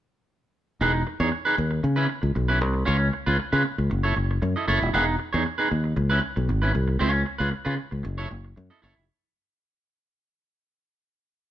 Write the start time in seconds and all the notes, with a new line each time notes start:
0.81 E1 D#4 G#4 B4
0.94 muted clean electric guitar stroke
1.07 muted clean electric guitar stroke
1.20 E2 D#4 G#4 C#5
1.32 muted clean electric guitar stroke
1.45 D#4 G#4 B4
1.58 D#2, muted clean electric guitar stroke
1.71 muted clean electric guitar stroke
1.83 C#3, muted clean electric guitar stroke
1.96 C#4 E4 B4
2.08 muted clean electric guitar stroke
2.22 C#2, muted clean electric guitar stroke
2.35 B1, muted clean electric guitar stroke
2.48 C#4 E4 B4
2.61 C2, muted clean electric guitar stroke
2.74 muted clean electric guitar stroke
2.85 C#2 C#4 F4 C#5
2.99 muted clean electric guitar stroke
3.13 muted clean electric guitar stroke
3.26 C#2 C#4 F4 B4
3.39 muted fingered electric bass stroke, muted clean electric guitar stroke
3.52 C#3 C#4 F4 B4
3.65 muted clean electric guitar stroke
3.78 C#2, muted clean electric guitar stroke
3.90 F#1, muted clean electric guitar stroke
4.03 E4 A4 C#5
4.16 F#1, muted clean electric guitar stroke
4.31 muted clean electric guitar stroke
4.42 F#2, muted clean electric guitar stroke
4.56 E4 A4 D#5
4.68 F#1 E4 A4 C#5
4.81 D#1, muted clean electric guitar stroke
4.93 E1 D#4 G#4 B4
5.06 muted clean electric guitar stroke
5.19 muted clean electric guitar stroke
5.33 E2 D#4 G#4 C#5
5.45 muted clean electric guitar stroke
5.58 D#4 G#4 B4
5.70 D#2, muted clean electric guitar stroke
5.84 muted clean electric guitar stroke
5.96 C#2, muted clean electric guitar stroke
6.10 C#4 E4 B4
6.22 muted clean electric guitar stroke
6.36 B1, muted clean electric guitar stroke
6.49 G#1, muted clean electric guitar stroke
6.62 C#4 E4 B4
6.73 C2, muted clean electric guitar stroke
6.88 muted clean electric guitar stroke
6.99 C#2 C#4 F4 C#5
7.13 muted clean electric guitar stroke
7.26 muted clean electric guitar stroke
7.38 C#2 C#4 F4 B4
7.51 muted clean electric guitar stroke, muted fingered electric bass stroke
7.65 C#3 C#4 F4 B4
7.77 muted clean electric guitar stroke
7.91 C#2, muted clean electric guitar stroke
8.03 F#1, muted clean electric guitar stroke
8.18 E4 A4 C#5
8.31 F#1, muted clean electric guitar stroke
8.45 muted clean electric guitar stroke
8.56 F#2, muted clean electric guitar stroke
8.70 E4 A4 D#5
8.82 F#1 E4 A4 C#5
8.96 F1, muted clean electric guitar stroke